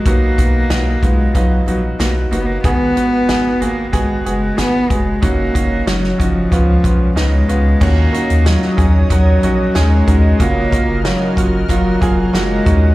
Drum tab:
CC |----------------|----------------|----------------|x---------------|
HH |x-x-x-x-x-x-x-x-|x-x-x-x-x-x-x-x-|x-x-x-x-x-x-x-x-|--xxx-x-x-x-x-x-|
SD |----o-------o---|----o-------o---|----oo------o---|----oo------o---|
BD |o-o---o-o-------|o-------o-----o-|o-o---o-o-o-----|o-----o-o-----o-|

CC |----------------|
HH |x-x-x-x-x-x-x-x-|
SD |----o-------o---|
BD |o-o---o-o-o---o-|